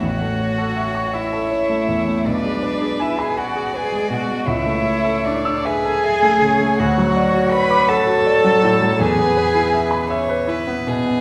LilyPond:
<<
  \new Staff \with { instrumentName = "Violin" } { \time 6/8 \key a \major \tempo 4. = 54 fis''4. e''4. | d''4 e''16 gis''16 fis''8 gis''8 fis''8 | e''4 d''8 gis''4. | fis''4 b''8 a''4. |
gis''4. r4. | }
  \new Staff \with { instrumentName = "Violin" } { \time 6/8 \key a \major cis''2. | b'4. d''4. | cis''4. b'8 a'8 cis''8~ | cis''2. |
b'4. cis''8 b'8 gis'8 | }
  \new Staff \with { instrumentName = "Grand piano" } { \time 6/8 \key a \major a,,16 a16 cis''16 a'16 e''16 cis'''16 e''16 a'16 cis''16 a16 e,16 a16 | b,,16 gis16 b'16 gis'16 gis''16 b''16 gis''16 gis'16 b'16 gis16 b,16 gis16 | cis,16 a16 e''16 a'16 e''16 e'''16 e''16 a'16 e''16 a16 cis16 a16 | d,16 fis16 d''16 fis'16 fis''16 d'''16 fis''16 fis'16 d''16 fis16 a,16 fis16 |
e,16 b16 b'16 e'16 e''16 b''16 e''16 b'16 e'16 b16 b,16 b16 | }
  \new Staff \with { instrumentName = "Cello" } { \time 6/8 \key a \major fis'4. e'4. | d'4 e'16 gis'16 fis'8 gis'8 fis'8 | e'4 d'8 gis'4. | fis'4 b'8 a'4. |
gis'4. r4. | }
>>